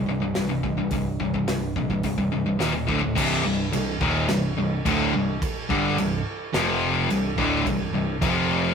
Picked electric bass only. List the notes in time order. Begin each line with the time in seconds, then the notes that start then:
0.07 C1
0.35 C1
0.63 C1
0.91 C1
1.48 C1
1.76 A#1
2.04 C1
2.32 C1
2.61 D#1
2.88 D1
3.17 C1
3.44 C1
3.73 C1
4.01 D#1
4.29 C1
4.57 C1
4.85 D1
5.14 C1
5.70 G1
5.98 C1
6.54 F1
7.11 C1
7.38 D1
7.66 C1
7.93 C1
8.22 F1